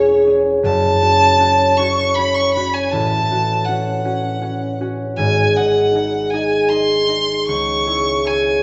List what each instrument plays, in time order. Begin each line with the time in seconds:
Already playing: harp E1 E2 C#4 E4 G#4 C#5, violin C#5
0.27 harp C#4 G#4 C#5
0.63 harp F#1 F#2, violin A5
1.02 harp C#4 F#4 C#5
1.39 harp C#4 F#4 C#5
1.77 harp C#4 F#4 C#5, violin C#6
2.15 harp C#4 F#4 C#5, violin B5
2.34 violin C#6
2.54 harp C#4 F#4 C#5, violin B5
2.74 violin G#5
2.91 harp A1 A2, violin A5
3.30 harp C#4 F#4 F#5
3.65 harp C#4 F#4 F#5, violin F#5
4.05 harp C#4 F#4 F#5
4.41 harp C#4 F#4 F#5
4.81 harp C#4 F#4 F#5
5.17 harp G#1 G#2, violin G#5
5.55 harp D#4 G#4 D#5, violin F#5
5.95 harp D#4 G#4 D#5
6.30 harp D#4 G#4, violin G#5
6.34 harp D#5
6.69 harp D#4 G#4 D#5, violin C6
7.08 harp D#4 G#4 D#5
7.47 harp C#2, violin C#6
7.86 harp E4 G#4 C#5
8.24 harp E4 G#4 C#5, violin G#5